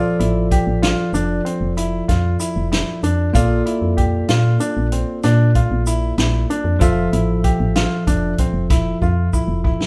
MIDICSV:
0, 0, Header, 1, 5, 480
1, 0, Start_track
1, 0, Key_signature, -1, "major"
1, 0, Tempo, 629591
1, 2551, Time_signature, 11, 3, 24, 8
1, 7522, End_track
2, 0, Start_track
2, 0, Title_t, "Tine electric piano"
2, 0, Program_c, 0, 4
2, 0, Note_on_c, 0, 53, 66
2, 0, Note_on_c, 0, 65, 62
2, 0, Note_on_c, 0, 69, 61
2, 0, Note_on_c, 0, 74, 72
2, 2518, Note_off_c, 0, 53, 0
2, 2520, Note_off_c, 0, 65, 0
2, 2525, Note_off_c, 0, 69, 0
2, 2528, Note_off_c, 0, 74, 0
2, 2540, Note_on_c, 0, 58, 65
2, 2544, Note_on_c, 0, 65, 62
2, 2556, Note_on_c, 0, 69, 63
2, 2564, Note_on_c, 0, 74, 69
2, 5155, Note_off_c, 0, 58, 0
2, 5157, Note_off_c, 0, 65, 0
2, 5163, Note_off_c, 0, 69, 0
2, 5167, Note_off_c, 0, 74, 0
2, 5178, Note_on_c, 0, 53, 70
2, 5184, Note_on_c, 0, 65, 60
2, 5192, Note_on_c, 0, 69, 67
2, 5201, Note_on_c, 0, 76, 76
2, 7522, Note_off_c, 0, 53, 0
2, 7522, Note_off_c, 0, 65, 0
2, 7522, Note_off_c, 0, 69, 0
2, 7522, Note_off_c, 0, 76, 0
2, 7522, End_track
3, 0, Start_track
3, 0, Title_t, "Grand piano"
3, 0, Program_c, 1, 0
3, 0, Note_on_c, 1, 65, 82
3, 106, Note_off_c, 1, 65, 0
3, 149, Note_on_c, 1, 64, 72
3, 346, Note_off_c, 1, 64, 0
3, 394, Note_on_c, 1, 67, 65
3, 589, Note_off_c, 1, 67, 0
3, 628, Note_on_c, 1, 65, 79
3, 826, Note_off_c, 1, 65, 0
3, 869, Note_on_c, 1, 62, 69
3, 1066, Note_off_c, 1, 62, 0
3, 1105, Note_on_c, 1, 60, 70
3, 1304, Note_off_c, 1, 60, 0
3, 1350, Note_on_c, 1, 64, 81
3, 1547, Note_off_c, 1, 64, 0
3, 1588, Note_on_c, 1, 65, 63
3, 1785, Note_off_c, 1, 65, 0
3, 1828, Note_on_c, 1, 64, 76
3, 2026, Note_off_c, 1, 64, 0
3, 2072, Note_on_c, 1, 64, 69
3, 2268, Note_off_c, 1, 64, 0
3, 2313, Note_on_c, 1, 62, 65
3, 2509, Note_off_c, 1, 62, 0
3, 2551, Note_on_c, 1, 65, 85
3, 2747, Note_off_c, 1, 65, 0
3, 2789, Note_on_c, 1, 64, 68
3, 2986, Note_off_c, 1, 64, 0
3, 3027, Note_on_c, 1, 67, 64
3, 3225, Note_off_c, 1, 67, 0
3, 3269, Note_on_c, 1, 65, 81
3, 3466, Note_off_c, 1, 65, 0
3, 3508, Note_on_c, 1, 62, 70
3, 3705, Note_off_c, 1, 62, 0
3, 3753, Note_on_c, 1, 60, 67
3, 3948, Note_off_c, 1, 60, 0
3, 3993, Note_on_c, 1, 62, 82
3, 4188, Note_off_c, 1, 62, 0
3, 4234, Note_on_c, 1, 65, 71
3, 4429, Note_off_c, 1, 65, 0
3, 4475, Note_on_c, 1, 64, 79
3, 4670, Note_off_c, 1, 64, 0
3, 4713, Note_on_c, 1, 64, 72
3, 4908, Note_off_c, 1, 64, 0
3, 4956, Note_on_c, 1, 62, 66
3, 5150, Note_off_c, 1, 62, 0
3, 5195, Note_on_c, 1, 65, 84
3, 5390, Note_off_c, 1, 65, 0
3, 5435, Note_on_c, 1, 64, 72
3, 5630, Note_off_c, 1, 64, 0
3, 5672, Note_on_c, 1, 67, 68
3, 5868, Note_off_c, 1, 67, 0
3, 5914, Note_on_c, 1, 65, 78
3, 6109, Note_off_c, 1, 65, 0
3, 6154, Note_on_c, 1, 62, 68
3, 6349, Note_off_c, 1, 62, 0
3, 6399, Note_on_c, 1, 60, 66
3, 6592, Note_off_c, 1, 60, 0
3, 6637, Note_on_c, 1, 64, 83
3, 6831, Note_off_c, 1, 64, 0
3, 6877, Note_on_c, 1, 65, 64
3, 7071, Note_off_c, 1, 65, 0
3, 7116, Note_on_c, 1, 64, 71
3, 7311, Note_off_c, 1, 64, 0
3, 7351, Note_on_c, 1, 64, 69
3, 7522, Note_off_c, 1, 64, 0
3, 7522, End_track
4, 0, Start_track
4, 0, Title_t, "FM bass"
4, 0, Program_c, 2, 39
4, 151, Note_on_c, 2, 33, 92
4, 469, Note_off_c, 2, 33, 0
4, 506, Note_on_c, 2, 33, 75
4, 720, Note_off_c, 2, 33, 0
4, 861, Note_on_c, 2, 29, 85
4, 1077, Note_off_c, 2, 29, 0
4, 1225, Note_on_c, 2, 29, 84
4, 1546, Note_off_c, 2, 29, 0
4, 1594, Note_on_c, 2, 41, 85
4, 1805, Note_off_c, 2, 41, 0
4, 1951, Note_on_c, 2, 29, 89
4, 2163, Note_off_c, 2, 29, 0
4, 2310, Note_on_c, 2, 41, 80
4, 2523, Note_off_c, 2, 41, 0
4, 2554, Note_on_c, 2, 34, 97
4, 2765, Note_off_c, 2, 34, 0
4, 2909, Note_on_c, 2, 41, 81
4, 3228, Note_off_c, 2, 41, 0
4, 3273, Note_on_c, 2, 46, 87
4, 3484, Note_off_c, 2, 46, 0
4, 3635, Note_on_c, 2, 34, 82
4, 3845, Note_off_c, 2, 34, 0
4, 3996, Note_on_c, 2, 46, 96
4, 4312, Note_off_c, 2, 46, 0
4, 4353, Note_on_c, 2, 34, 86
4, 4670, Note_off_c, 2, 34, 0
4, 4711, Note_on_c, 2, 34, 103
4, 4923, Note_off_c, 2, 34, 0
4, 5066, Note_on_c, 2, 41, 83
4, 5174, Note_off_c, 2, 41, 0
4, 5193, Note_on_c, 2, 29, 103
4, 5404, Note_off_c, 2, 29, 0
4, 5432, Note_on_c, 2, 33, 91
4, 5750, Note_off_c, 2, 33, 0
4, 5791, Note_on_c, 2, 33, 87
4, 6003, Note_off_c, 2, 33, 0
4, 6153, Note_on_c, 2, 29, 86
4, 6364, Note_off_c, 2, 29, 0
4, 6502, Note_on_c, 2, 29, 83
4, 6825, Note_off_c, 2, 29, 0
4, 6875, Note_on_c, 2, 41, 88
4, 7086, Note_off_c, 2, 41, 0
4, 7223, Note_on_c, 2, 29, 85
4, 7439, Note_off_c, 2, 29, 0
4, 7522, End_track
5, 0, Start_track
5, 0, Title_t, "Drums"
5, 155, Note_on_c, 9, 42, 54
5, 231, Note_off_c, 9, 42, 0
5, 391, Note_on_c, 9, 36, 71
5, 392, Note_on_c, 9, 42, 55
5, 468, Note_off_c, 9, 36, 0
5, 468, Note_off_c, 9, 42, 0
5, 632, Note_on_c, 9, 38, 88
5, 632, Note_on_c, 9, 42, 64
5, 708, Note_off_c, 9, 38, 0
5, 708, Note_off_c, 9, 42, 0
5, 871, Note_on_c, 9, 82, 58
5, 874, Note_on_c, 9, 42, 50
5, 947, Note_off_c, 9, 82, 0
5, 951, Note_off_c, 9, 42, 0
5, 1114, Note_on_c, 9, 42, 54
5, 1191, Note_off_c, 9, 42, 0
5, 1352, Note_on_c, 9, 82, 20
5, 1353, Note_on_c, 9, 42, 74
5, 1428, Note_off_c, 9, 82, 0
5, 1429, Note_off_c, 9, 42, 0
5, 1592, Note_on_c, 9, 36, 68
5, 1592, Note_on_c, 9, 38, 31
5, 1592, Note_on_c, 9, 42, 52
5, 1668, Note_off_c, 9, 36, 0
5, 1668, Note_off_c, 9, 38, 0
5, 1668, Note_off_c, 9, 42, 0
5, 1829, Note_on_c, 9, 82, 65
5, 1835, Note_on_c, 9, 42, 54
5, 1905, Note_off_c, 9, 82, 0
5, 1912, Note_off_c, 9, 42, 0
5, 2077, Note_on_c, 9, 38, 86
5, 2077, Note_on_c, 9, 42, 67
5, 2153, Note_off_c, 9, 38, 0
5, 2153, Note_off_c, 9, 42, 0
5, 2311, Note_on_c, 9, 82, 22
5, 2315, Note_on_c, 9, 42, 62
5, 2387, Note_off_c, 9, 82, 0
5, 2391, Note_off_c, 9, 42, 0
5, 2554, Note_on_c, 9, 36, 102
5, 2555, Note_on_c, 9, 42, 77
5, 2555, Note_on_c, 9, 82, 64
5, 2630, Note_off_c, 9, 36, 0
5, 2631, Note_off_c, 9, 42, 0
5, 2632, Note_off_c, 9, 82, 0
5, 2794, Note_on_c, 9, 42, 59
5, 2870, Note_off_c, 9, 42, 0
5, 3032, Note_on_c, 9, 42, 58
5, 3033, Note_on_c, 9, 36, 73
5, 3109, Note_off_c, 9, 42, 0
5, 3110, Note_off_c, 9, 36, 0
5, 3268, Note_on_c, 9, 38, 89
5, 3268, Note_on_c, 9, 42, 70
5, 3344, Note_off_c, 9, 38, 0
5, 3344, Note_off_c, 9, 42, 0
5, 3509, Note_on_c, 9, 42, 55
5, 3511, Note_on_c, 9, 82, 62
5, 3585, Note_off_c, 9, 42, 0
5, 3587, Note_off_c, 9, 82, 0
5, 3750, Note_on_c, 9, 42, 55
5, 3826, Note_off_c, 9, 42, 0
5, 3989, Note_on_c, 9, 38, 29
5, 3989, Note_on_c, 9, 42, 66
5, 3990, Note_on_c, 9, 82, 19
5, 4066, Note_off_c, 9, 38, 0
5, 4066, Note_off_c, 9, 42, 0
5, 4066, Note_off_c, 9, 82, 0
5, 4232, Note_on_c, 9, 42, 56
5, 4233, Note_on_c, 9, 36, 72
5, 4308, Note_off_c, 9, 42, 0
5, 4309, Note_off_c, 9, 36, 0
5, 4471, Note_on_c, 9, 82, 64
5, 4476, Note_on_c, 9, 42, 53
5, 4547, Note_off_c, 9, 82, 0
5, 4552, Note_off_c, 9, 42, 0
5, 4711, Note_on_c, 9, 38, 87
5, 4711, Note_on_c, 9, 42, 61
5, 4788, Note_off_c, 9, 38, 0
5, 4788, Note_off_c, 9, 42, 0
5, 4957, Note_on_c, 9, 82, 18
5, 4958, Note_on_c, 9, 42, 54
5, 5033, Note_off_c, 9, 82, 0
5, 5034, Note_off_c, 9, 42, 0
5, 5191, Note_on_c, 9, 42, 74
5, 5193, Note_on_c, 9, 36, 97
5, 5195, Note_on_c, 9, 82, 55
5, 5267, Note_off_c, 9, 42, 0
5, 5269, Note_off_c, 9, 36, 0
5, 5271, Note_off_c, 9, 82, 0
5, 5436, Note_on_c, 9, 42, 50
5, 5512, Note_off_c, 9, 42, 0
5, 5672, Note_on_c, 9, 42, 57
5, 5674, Note_on_c, 9, 36, 75
5, 5748, Note_off_c, 9, 42, 0
5, 5750, Note_off_c, 9, 36, 0
5, 5913, Note_on_c, 9, 38, 92
5, 5913, Note_on_c, 9, 42, 68
5, 5918, Note_on_c, 9, 82, 17
5, 5989, Note_off_c, 9, 38, 0
5, 5989, Note_off_c, 9, 42, 0
5, 5995, Note_off_c, 9, 82, 0
5, 6154, Note_on_c, 9, 36, 66
5, 6155, Note_on_c, 9, 42, 62
5, 6160, Note_on_c, 9, 82, 50
5, 6230, Note_off_c, 9, 36, 0
5, 6232, Note_off_c, 9, 42, 0
5, 6236, Note_off_c, 9, 82, 0
5, 6391, Note_on_c, 9, 42, 62
5, 6393, Note_on_c, 9, 36, 68
5, 6397, Note_on_c, 9, 82, 17
5, 6467, Note_off_c, 9, 42, 0
5, 6470, Note_off_c, 9, 36, 0
5, 6473, Note_off_c, 9, 82, 0
5, 6634, Note_on_c, 9, 36, 91
5, 6634, Note_on_c, 9, 38, 27
5, 6634, Note_on_c, 9, 42, 72
5, 6639, Note_on_c, 9, 82, 16
5, 6710, Note_off_c, 9, 36, 0
5, 6711, Note_off_c, 9, 38, 0
5, 6711, Note_off_c, 9, 42, 0
5, 6715, Note_off_c, 9, 82, 0
5, 6875, Note_on_c, 9, 36, 54
5, 6879, Note_on_c, 9, 82, 17
5, 6951, Note_off_c, 9, 36, 0
5, 6955, Note_off_c, 9, 82, 0
5, 7115, Note_on_c, 9, 36, 59
5, 7117, Note_on_c, 9, 82, 57
5, 7191, Note_off_c, 9, 36, 0
5, 7193, Note_off_c, 9, 82, 0
5, 7354, Note_on_c, 9, 36, 64
5, 7430, Note_off_c, 9, 36, 0
5, 7475, Note_on_c, 9, 38, 73
5, 7522, Note_off_c, 9, 38, 0
5, 7522, End_track
0, 0, End_of_file